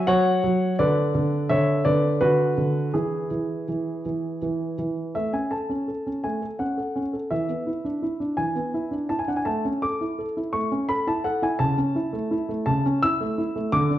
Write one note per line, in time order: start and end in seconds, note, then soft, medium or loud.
0.07 0.42 F#3 medium
0.07 0.75 C#5 medium
0.07 0.74 F#5 loud
0.44 0.78 F#3 medium
0.79 1.13 D3 medium
0.79 1.47 B4 medium
0.79 1.50 D5 medium
1.15 1.48 D3 medium
1.49 1.84 D3 medium
1.49 1.84 C#5 medium
1.49 1.85 E5 medium
1.85 2.20 D3 medium
1.85 2.19 B4 medium
1.85 2.21 D5 medium
2.21 2.56 D3 medium
2.21 2.91 F#4 medium
2.21 2.94 B4 medium
2.58 2.93 D3 medium
2.94 3.29 E3 medium
2.94 4.75 E4 soft
2.94 4.75 G#4 medium
3.31 3.67 E3 soft
3.68 4.04 E3 soft
4.06 4.41 E3 soft
4.42 4.77 E3 soft
4.79 5.14 E3 soft
5.15 5.33 A3 soft
5.15 5.33 E5 medium
5.33 5.52 C#4 soft
5.33 5.51 G#5 medium
5.51 5.70 A4 soft
5.51 6.20 A5 medium
5.69 5.89 C#4 soft
5.88 6.07 A4 soft
6.07 6.25 C#4 soft
6.24 6.42 A3 soft
6.24 6.45 G#5 medium
6.42 6.61 A4 soft
6.59 6.78 C#4 soft
6.59 7.02 F#5 medium
6.77 6.96 A4 soft
6.96 7.14 C#4 soft
7.13 7.31 A4 soft
7.31 7.48 E3 soft
7.31 8.34 E5 medium
7.49 7.67 B3 soft
7.67 7.85 E4 soft
7.85 8.03 D4 soft
8.02 8.21 E4 soft
8.20 8.39 D4 soft
8.37 8.55 E3 soft
8.37 9.09 G#5 medium
8.55 8.74 B3 soft
8.74 8.93 E4 soft
8.91 9.10 D4 soft
9.09 9.29 E4 soft
9.09 9.19 A5 medium
9.19 9.28 G#5 medium
9.28 9.47 D4 soft
9.28 9.37 F#5 medium
9.37 9.46 G#5 medium
9.45 9.64 A3 medium
9.45 9.68 A5 medium
9.65 9.84 C#4 soft
9.82 10.02 A4 soft
9.82 10.25 D6 medium
10.01 10.20 E4 soft
10.19 10.37 A4 soft
10.37 10.55 E4 soft
10.53 10.71 A3 soft
10.53 10.89 C#6 medium
10.72 10.90 C#4 soft
10.89 11.08 A4 soft
10.89 11.07 B5 medium
11.07 11.26 E4 soft
11.07 11.25 A5 medium
11.24 11.43 A4 medium
11.24 11.42 F#5 medium
11.42 11.60 E4 soft
11.42 11.61 G#5 medium
11.59 11.77 C#3 medium
11.59 12.64 A5 medium
11.78 11.96 C#4 soft
11.96 12.14 E4 medium
12.13 12.32 A3 medium
12.31 12.50 E4 medium
12.49 12.68 A3 soft
12.66 12.85 C#3 medium
12.66 12.99 A5 medium
12.86 13.05 C#4 medium
13.03 13.22 E4 medium
13.03 13.70 E6 medium
13.21 13.40 A3 medium
13.38 13.57 E4 medium
13.56 13.74 A3 medium
13.72 13.90 D3 medium
13.72 13.99 D6 medium
13.90 13.99 D4 medium